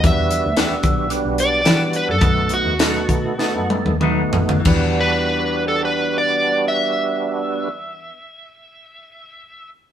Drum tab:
CC |----------------|----------------|x---------------|----------------|
HH |x-x-x-x-x-x-x-x-|x-x-x-x---------|----------------|----------------|
SD |----o-------o---|----o---o-------|----------------|----------------|
T1 |----------------|----------oo----|----------------|----------------|
T2 |----------------|------------o---|----------------|----------------|
FT |----------------|--------------oo|----------------|----------------|
BD |o-----o---------|o-----o---------|o---------------|----------------|